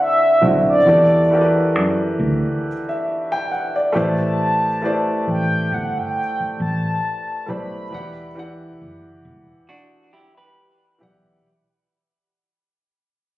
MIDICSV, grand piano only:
0, 0, Header, 1, 2, 480
1, 0, Start_track
1, 0, Key_signature, 1, "minor"
1, 0, Tempo, 882353
1, 466, Time_signature, 4, 2, 24, 8
1, 7273, End_track
2, 0, Start_track
2, 0, Title_t, "Grand piano"
2, 0, Program_c, 0, 0
2, 0, Control_c, 0, 64, 127
2, 226, Note_on_c, 0, 50, 60
2, 230, Note_on_c, 0, 60, 51
2, 235, Note_on_c, 0, 64, 51
2, 243, Note_on_c, 0, 66, 51
2, 246, Note_on_c, 0, 76, 62
2, 418, Note_off_c, 0, 50, 0
2, 420, Note_off_c, 0, 60, 0
2, 423, Note_off_c, 0, 64, 0
2, 426, Note_off_c, 0, 66, 0
2, 428, Note_off_c, 0, 76, 0
2, 463, Note_on_c, 0, 52, 61
2, 468, Note_on_c, 0, 64, 56
2, 470, Note_on_c, 0, 66, 60
2, 472, Control_c, 0, 64, 0
2, 476, Note_on_c, 0, 67, 60
2, 481, Note_on_c, 0, 69, 65
2, 485, Note_on_c, 0, 74, 71
2, 553, Control_c, 0, 64, 127
2, 656, Note_off_c, 0, 52, 0
2, 659, Note_off_c, 0, 64, 0
2, 660, Note_off_c, 0, 66, 0
2, 663, Note_off_c, 0, 67, 0
2, 666, Note_off_c, 0, 69, 0
2, 668, Note_off_c, 0, 74, 0
2, 709, Note_on_c, 0, 52, 68
2, 714, Note_on_c, 0, 64, 64
2, 718, Note_on_c, 0, 66, 59
2, 723, Note_on_c, 0, 67, 65
2, 725, Note_on_c, 0, 69, 62
2, 731, Note_on_c, 0, 70, 60
2, 758, Note_off_c, 0, 70, 0
2, 767, Note_on_c, 0, 71, 74
2, 1454, Note_off_c, 0, 52, 0
2, 1457, Note_off_c, 0, 64, 0
2, 1459, Note_off_c, 0, 66, 0
2, 1461, Note_off_c, 0, 67, 0
2, 1462, Note_off_c, 0, 69, 0
2, 1483, Note_off_c, 0, 71, 0
2, 1572, Note_on_c, 0, 76, 59
2, 1794, Note_off_c, 0, 76, 0
2, 1806, Note_on_c, 0, 79, 66
2, 1904, Note_off_c, 0, 79, 0
2, 1912, Note_on_c, 0, 78, 54
2, 2036, Note_off_c, 0, 78, 0
2, 2044, Note_on_c, 0, 74, 66
2, 2135, Note_on_c, 0, 57, 71
2, 2140, Note_on_c, 0, 64, 68
2, 2145, Note_on_c, 0, 67, 66
2, 2150, Note_off_c, 0, 74, 0
2, 2150, Note_on_c, 0, 71, 68
2, 2153, Control_c, 0, 64, 0
2, 2154, Note_on_c, 0, 72, 64
2, 2158, Note_on_c, 0, 74, 75
2, 2249, Control_c, 0, 64, 127
2, 2535, Note_off_c, 0, 57, 0
2, 2538, Note_off_c, 0, 64, 0
2, 2540, Note_off_c, 0, 67, 0
2, 2543, Note_off_c, 0, 71, 0
2, 2545, Note_off_c, 0, 72, 0
2, 2547, Note_off_c, 0, 74, 0
2, 2621, Note_on_c, 0, 57, 67
2, 2625, Note_on_c, 0, 64, 68
2, 2629, Note_on_c, 0, 67, 60
2, 2633, Note_on_c, 0, 71, 60
2, 2637, Note_on_c, 0, 72, 60
2, 2641, Note_on_c, 0, 74, 79
2, 3370, Note_off_c, 0, 57, 0
2, 3372, Note_off_c, 0, 64, 0
2, 3374, Note_off_c, 0, 67, 0
2, 3376, Note_off_c, 0, 71, 0
2, 3378, Note_off_c, 0, 72, 0
2, 3380, Note_off_c, 0, 74, 0
2, 4060, Note_on_c, 0, 57, 58
2, 4066, Note_on_c, 0, 64, 59
2, 4072, Note_on_c, 0, 67, 56
2, 4074, Note_on_c, 0, 71, 56
2, 4079, Note_on_c, 0, 72, 53
2, 4083, Note_on_c, 0, 74, 64
2, 4255, Note_off_c, 0, 57, 0
2, 4258, Note_off_c, 0, 64, 0
2, 4261, Note_off_c, 0, 67, 0
2, 4262, Note_off_c, 0, 71, 0
2, 4265, Note_off_c, 0, 72, 0
2, 4267, Note_off_c, 0, 74, 0
2, 4298, Note_on_c, 0, 52, 64
2, 4305, Note_on_c, 0, 64, 61
2, 4310, Note_on_c, 0, 67, 62
2, 4313, Control_c, 0, 64, 0
2, 4315, Note_on_c, 0, 74, 66
2, 4321, Note_on_c, 0, 78, 80
2, 4404, Control_c, 0, 64, 127
2, 4494, Note_off_c, 0, 52, 0
2, 4498, Note_off_c, 0, 64, 0
2, 4500, Note_off_c, 0, 67, 0
2, 4503, Note_off_c, 0, 74, 0
2, 4506, Note_off_c, 0, 78, 0
2, 4542, Note_on_c, 0, 52, 75
2, 4548, Note_on_c, 0, 64, 65
2, 4554, Note_on_c, 0, 67, 61
2, 4558, Note_on_c, 0, 74, 58
2, 4565, Note_on_c, 0, 78, 77
2, 5291, Note_off_c, 0, 52, 0
2, 5294, Note_off_c, 0, 64, 0
2, 5297, Note_off_c, 0, 67, 0
2, 5299, Note_off_c, 0, 74, 0
2, 5302, Note_off_c, 0, 78, 0
2, 5975, Note_on_c, 0, 52, 66
2, 5984, Note_on_c, 0, 64, 65
2, 5989, Note_on_c, 0, 67, 67
2, 5993, Note_on_c, 0, 74, 58
2, 6000, Note_on_c, 0, 78, 79
2, 6173, Note_off_c, 0, 52, 0
2, 6177, Note_off_c, 0, 64, 0
2, 6179, Note_off_c, 0, 67, 0
2, 6182, Note_off_c, 0, 74, 0
2, 6185, Note_off_c, 0, 78, 0
2, 6233, Control_c, 0, 64, 0
2, 7273, End_track
0, 0, End_of_file